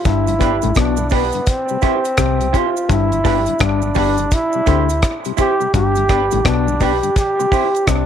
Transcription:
0.05 fingered electric bass G1, clav G2, trombone E4, kick, closed hi-hat, cabasa
0.27 tonewheel organ G2 D3, closed hi-hat, cabasa
0.39 tonewheel organ B3 D4 G4, clean electric guitar D4 G4 B4, kick, closed hi-hat, cabasa
0.62 fingered electric bass A1, tonewheel organ G2 D3, clav A2, closed hi-hat, cabasa
0.75 fingered electric bass B1, clav B2, trombone D4, kick, cross-stick, closed hi-hat, cabasa
0.97 tonewheel organ G2 D3, cabasa
1.10 tonewheel organ B3 D4 G4, clean electric guitar D4 G4 B4, kick, open hi-hat, cabasa
1.14 trombone B3
1.32 tonewheel organ G2 D3, closed hi-hat, cabasa
1.46 trombone C4, kick, closed hi-hat, cabasa
1.69 tonewheel organ C3 G3, cabasa
1.82 tonewheel organ C4 E4 G4, clean electric guitar E4 G4 C5, kick, closed hi-hat, cabasa
2.05 closed hi-hat, cabasa
2.17 fingered electric bass C2, clav C3, kick, cross-stick, closed hi-hat, cabasa
2.41 tonewheel organ C3 G3, closed hi-hat, cabasa
2.53 tonewheel organ C4 E4 G4, clean electric guitar E4 G4 C5, kick, closed hi-hat, cabasa
2.57 trombone F4
2.77 cabasa
2.89 fingered electric bass G1, clav G2, trombone E4, kick, closed hi-hat, cabasa
3.12 tonewheel organ G2 D3, closed hi-hat, cabasa
3.24 fingered electric bass G1, clav G2, tonewheel organ B3 D4 G4, clean electric guitar D4 G4 B4, kick, open hi-hat, cabasa
3.46 tonewheel organ G2 D3, closed hi-hat, cabasa
3.59 fingered electric bass G1, clav G2, trombone D4, kick, cross-stick, closed hi-hat, cabasa
3.82 tonewheel organ G2 D3, cabasa
3.95 fingered electric bass G1, clav G2, tonewheel organ B3 D4 G4, clean electric guitar D4 G4 B4, trombone D4, kick, open hi-hat, cabasa
4.18 tonewheel organ G2 D3, closed hi-hat, cabasa
4.31 trombone E4, kick, closed hi-hat, cabasa
4.53 tonewheel organ C3 G3, cabasa
4.66 fingered electric bass D2, clav D3, tonewheel organ C4 E4 G4, clean electric guitar E4 G4 C5, kick, closed hi-hat, cabasa
4.89 closed hi-hat, cabasa
5.02 kick, cross-stick, closed hi-hat, cabasa
5.25 tonewheel organ C3 G3, closed hi-hat, cabasa
5.37 tonewheel organ C4 E4 G4, clean electric guitar E4 G4 C5, trombone G4, kick, closed hi-hat, cabasa
5.60 tonewheel organ C3 G3, muted clean electric guitar stroke, cabasa
5.74 fingered electric bass G1, clav G2, trombone G4, kick, closed hi-hat, cabasa
5.95 tonewheel organ G2 D3, closed hi-hat, cabasa
6.09 tonewheel organ B3 D4 G4, clean electric guitar D4 G4 B4, kick, cross-stick, closed hi-hat, cabasa
6.31 fingered electric bass A1, tonewheel organ G2 D3, clav A2, closed hi-hat, cabasa
6.45 fingered electric bass B1, clav B2, trombone D4, kick, cross-stick, closed hi-hat, cabasa
6.68 tonewheel organ G2 D3, cabasa
6.80 tonewheel organ B3 D4 G4, clean electric guitar D4 G4 B4, trombone G4, kick, open hi-hat, cabasa
7.03 tonewheel organ G2 D3, closed hi-hat, cabasa
7.16 trombone G4, kick, closed hi-hat, cabasa
7.39 tonewheel organ C3 G3, muted clean electric guitar stroke, cabasa
7.52 tonewheel organ C4 E4 G4, clean electric guitar E4 G4 C5, kick, open hi-hat, cabasa
7.75 closed hi-hat, cabasa
7.87 fingered electric bass C2, clav C3, trombone D4, kick, cross-stick, closed hi-hat, cabasa

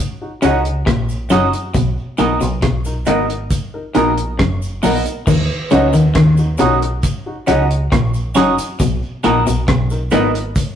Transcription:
0.21 grand piano D#4 F#4
0.42 fingered electric bass C#2, clean electric guitar C#3 C#4 F#4 A#4 D#5, grand piano C#4 D#4 F#4, closed hi-hat, cabasa
0.65 closed hi-hat
0.86 fingered electric bass A#1, clean electric guitar A#2, kick, cross-stick, closed hi-hat
1.09 cabasa
1.30 fingered electric bass F#1, clean electric guitar F#2 C#4 F#4 A#4 D#5, grand piano C#4 D#4 F#4, closed hi-hat, cabasa
1.53 closed hi-hat, cabasa
1.74 fingered electric bass B1, clean electric guitar B2, kick, closed hi-hat, cabasa
2.18 fingered electric bass A#1, clean electric guitar A#2 D#4 F#4 A#4 D#5, grand piano B3 D#4 A#4, closed hi-hat, cabasa
2.41 fingered electric bass B1, clean electric guitar B2, closed hi-hat, cabasa
2.62 fingered electric bass B1, clean electric guitar B2, kick, cross-stick, closed hi-hat
2.85 grand piano D#4 A#4, cabasa
3.05 fingered electric bass G#1, clean electric guitar G#2 D#4 F#4 A#4 D#5, grand piano B3 D#4 A#4, closed hi-hat, cabasa
3.30 closed hi-hat
3.51 kick, closed hi-hat, cabasa
3.74 grand piano D#4 A#4
3.94 fingered electric bass A#1, clean electric guitar A#2 D#4 F#4 A#4 D#5, grand piano B3 D#4 A#4, closed hi-hat, cabasa
4.18 closed hi-hat
4.39 fingered electric bass F#1, clean electric guitar F#2, kick, cross-stick, closed hi-hat
4.62 cabasa
4.83 fingered electric bass A#1, clean electric guitar A#2 D#4 F#4 A#4 D#5, grand piano B3 D#4 A#4, open hi-hat, cabasa
5.06 closed hi-hat, cabasa
5.27 fingered electric bass D#2, clean electric guitar D#3, kick, crash, cabasa
5.70 fingered electric bass C#2, clean electric guitar C#3 C#4 F#4 A#4 D#5, grand piano C#4 D#4 F#4, closed hi-hat, cabasa
5.93 fingered electric bass D#2, clean electric guitar D#3, closed hi-hat, cabasa
6.15 fingered electric bass D#2, clean electric guitar D#3, kick, cross-stick, closed hi-hat
6.37 grand piano D#4 F#4, cabasa
6.58 fingered electric bass B1, clean electric guitar B2 C#4 F#4 A#4 D#5, grand piano C#4 D#4 F#4, closed hi-hat, cabasa
6.82 muted clean electric guitar stroke, closed hi-hat
7.03 kick, closed hi-hat, cabasa
7.26 grand piano D#4 F#4
7.47 fingered electric bass C#2, clean electric guitar C#3 C#4 F#4 A#4 D#5, grand piano C#4 D#4 F#4, closed hi-hat, cabasa
7.71 closed hi-hat
7.92 fingered electric bass A#1, clean electric guitar A#2, kick, cross-stick, closed hi-hat
8.14 cabasa
8.35 fingered electric bass F#1, clean electric guitar F#2 C#4 F#4 A#4 D#5, grand piano C#4 D#4 F#4, closed hi-hat, cabasa
8.58 closed hi-hat, cabasa
8.79 fingered electric bass B1, clean electric guitar B2, kick, closed hi-hat, cabasa
9.23 fingered electric bass A#1, clean electric guitar A#2 B3 F#4 A#4 D#5, grand piano B3 D#4 A#4, closed hi-hat, cabasa
9.47 fingered electric bass B1, clean electric guitar B2, closed hi-hat, cabasa
9.68 fingered electric bass B1, clean electric guitar B2, kick, cross-stick, closed hi-hat
9.90 grand piano D#4 A#4, cabasa
10.11 fingered electric bass G#1, clean electric guitar G#2 B3 F#4 A#4 D#5, grand piano B3 D#4 A#4, closed hi-hat, cabasa
10.34 muted clean electric guitar stroke, closed hi-hat
10.56 kick, closed hi-hat, cabasa

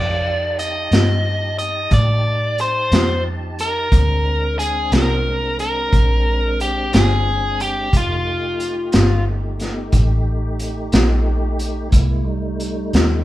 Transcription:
Already playing: fingered electric bass F2, tonewheel organ D#4 G4 A5, lead electric guitar D5
0.59 lead electric guitar D#5, closed hi-hat
0.91 fingered electric bass G2, snare, closed hi-hat
1.58 lead electric guitar D#5, closed hi-hat
1.91 fingered electric bass A2, lead electric guitar D5, kick, closed hi-hat
2.58 lead electric guitar C5, closed hi-hat
2.92 fingered electric bass F2, snare, closed hi-hat
3.59 lead electric guitar A#4, closed hi-hat
3.92 fingered electric bass D2, tonewheel organ G#3 C4 D4, kick, closed hi-hat
4.59 lead electric guitar G#4, closed hi-hat
4.92 fingered electric bass C2, lead electric guitar A#4, snare, closed hi-hat
5.59 lead electric guitar A#4, closed hi-hat
5.93 fingered electric bass A#1, kick, closed hi-hat
6.60 lead electric guitar G4, closed hi-hat
6.93 fingered electric bass G1, lead electric guitar G#4, snare, closed hi-hat
7.60 lead electric guitar G4, closed hi-hat
7.91 fingered electric bass F1, tonewheel organ A3 D#4 G4, kick, closed hi-hat
7.97 lead electric guitar F4
8.60 closed hi-hat
8.92 fingered electric bass G1, snare, closed hi-hat
9.60 snare, closed hi-hat
9.92 fingered electric bass A1, kick, closed hi-hat
10.60 closed hi-hat
10.92 fingered electric bass A#1, snare, closed hi-hat
11.59 closed hi-hat
11.90 fingered electric bass C2, tonewheel organ G#3 A#3 E4, kick, closed hi-hat
12.24 tonewheel organ G3 A3 D#4
12.60 closed hi-hat
12.93 fingered electric bass D#2, snare, closed hi-hat

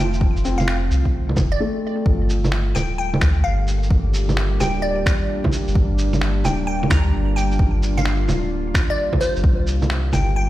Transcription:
Already playing: sub bass F1, ambient pad D#3 F3 A3 C4 F4, synth pluck G5
0.14 shaker
0.21 sub bass F1, kick
0.37 shaker
0.45 felt piano C4, shaker
0.58 synth pluck F5, low bongo, shaker
0.68 finger snap
0.91 sub bass C2, shaker
1.05 kick
1.29 low bongo
1.37 sub bass F1, kick, low bongo, shaker
1.52 synth pluck D5
1.60 felt piano A3
2.06 sub bass G1, felt piano F3, kick
2.26 ambient pad G3, shaker
2.44 ambient pad A#3, low bongo, shaker
2.52 finger snap
2.75 sub bass D1, synth pluck G5, low bongo, shaker
2.98 ambient pad G4, synth pluck G5
3.14 ambient pad D4, low bongo
3.21 sub bass D2, finger snap, kick, low bongo, shaker
3.44 sub bass G1, synth pluck F5
3.68 shaker
3.83 shaker
3.91 sub bass G1, kick
4.14 shaker
4.29 low bongo, shaker
4.37 finger snap
4.60 sub bass D1, felt piano G3, synth pluck G5, low bongo, shaker
4.82 synth pluck D5
5.06 finger snap, kick, shaker
5.44 kick, low bongo
5.52 shaker
5.68 sub bass G1, shaker
5.75 sub bass G1, kick
5.98 shaker
6.13 low bongo, shaker
6.21 finger snap
6.45 sub bass D1, synth pluck G5, low bongo, shaker
6.67 synth pluck G5
6.83 low bongo
6.88 sub bass D2, ambient pad F4, synth pluck A#5, finger snap, kick, low bongo, shaker
7.14 sub bass G1
7.36 synth pluck G5, shaker
7.52 shaker
7.59 sub bass G1, kick
7.83 shaker
7.98 synth pluck F5, low bongo, shaker
8.05 finger snap
8.28 sub bass D1, low bongo, shaker
8.74 finger snap, kick, shaker
8.90 synth pluck D5
9.13 kick, low bongo
9.21 synth pluck C5, shaker
9.36 sub bass G1, shaker
9.44 sub bass C2, ambient pad D#3, kick
9.67 shaker
9.82 low bongo, shaker
9.86 ambient pad G4, finger snap
9.98 ambient pad C4
10.13 sub bass G1, synth pluck G5, low bongo, shaker
10.36 synth pluck G5

